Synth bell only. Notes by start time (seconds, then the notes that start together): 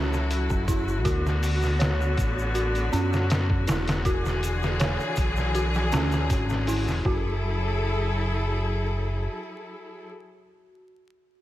Already playing: C#4 F#4 C#5
0.68 E4
1.05 F#4
1.79 C#5
2.55 F#4
2.92 C#4
3.68 E4
4.05 F#4
4.80 C#5
5.55 F#4
5.93 C#4
6.68 E4
7.06 F#4